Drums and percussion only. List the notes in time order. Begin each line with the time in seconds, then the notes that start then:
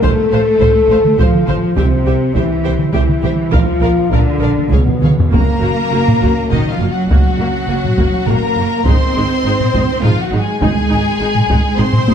0.03 taiko
0.61 taiko
1.04 taiko mid
1.19 taiko
1.34 taiko mid
1.49 taiko mid
1.77 taiko
2.35 taiko
2.79 taiko mid
2.93 taiko
3.09 taiko mid
3.24 taiko mid
3.53 taiko
4.13 taiko
4.58 taiko mid
4.73 taiko
4.88 taiko mid
5.04 taiko mid
5.19 taiko low
5.34 taiko
6.08 taiko low-mid
6.23 taiko
6.52 taiko low-mid
7.11 taiko
7.84 taiko low-mid
7.98 taiko
8.27 taiko low-mid
8.86 taiko
9.60 taiko low-mid
9.74 taiko
10.04 taiko low-mid
10.62 taiko
11.35 taiko low-mid
11.50 taiko
11.79 taiko low-mid
11.93 taiko low-mid
12.08 taiko high